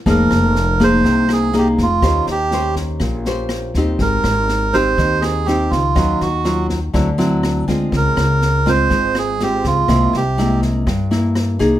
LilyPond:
<<
  \new Staff \with { instrumentName = "Melodica" } { \time 4/4 \key f \minor \tempo 4 = 122 bes'4. c''4 aes'8 g'8 f'8~ | f'8 g'4 r2 r8 | bes'4. c''4 aes'8 g'8 f'8~ | f'8 ges'4 r2 r8 |
bes'4. c''4 aes'8 g'8 f'8~ | f'8 g'4 r2 r8 | }
  \new Staff \with { instrumentName = "Nylon-string guitar" } { \time 4/4 \key f \minor << { <bes ees' aes'>4 r8 <bes ees' aes'>4. <bes ees' aes'>8 r8 | <des' g' c''>8 r8 <des' g' c''>4. <des' g' c''>4 <c' ees' g'>8~ | <c' ees' g'>4. <c' ees' g'>4. <c' ees' g'>8 r8 | <ges des' f'>8 r8 <ges des' f'>8 r8 <fis c' e'>8 <fis c' e'>4 <aes c' f'>8~ |
<aes c' f'>4. <aes c' f'>4. <aes c' f'>4 | <aes bes e'>8 r8 <aes bes e'>4 r8 <bes e'>4 <bes ees' aes'>8 | } \\ { f2 c2 | ees2 bes,2 | aes2 ees2 | ees2 d2 |
des2 aes,2 | c2 g,2 | } >> }
  \new Staff \with { instrumentName = "Upright bass" } { \clef bass \time 4/4 \key f \minor f,,8 f,,4. c,4. f,,8 | ees,8 ees,4. bes,,4. ees,8 | aes,,8 aes,,4. ees,4. des,8 | ees,8 ees,4. d,4. d,8 |
des,8 des,4. aes,,4. des,8 | c,8 c,4. g,4. c,8 | }
  \new DrumStaff \with { instrumentName = "Drums" } \drummode { \time 4/4 <bd sn>8 <ss sn>8 sn8 <bd sn>8 <bd sn>8 <ss sn>8 sn8 <bd sn>8 | <bd ss sn>8 sn8 sn8 <bd sn>8 <bd ss sn>8 sn8 <ss sn>8 <bd sn>8 | <bd sn>8 <ss sn>8 sn8 <bd sn>8 <bd sn>8 <ss sn>8 sn8 <bd sn>8 | <bd ss sn>8 sn8 sn8 <bd sn>8 <bd ss sn>8 sn8 <ss sn>8 <bd sn>8 |
<bd sn>8 <ss sn>8 sn8 <bd sn>8 <bd sn>8 <ss sn>8 sn8 <bd sn>8 | <bd ss sn>8 sn8 sn8 <bd sn>8 <bd ss sn>8 sn8 <ss sn>8 <bd sn>8 | }
>>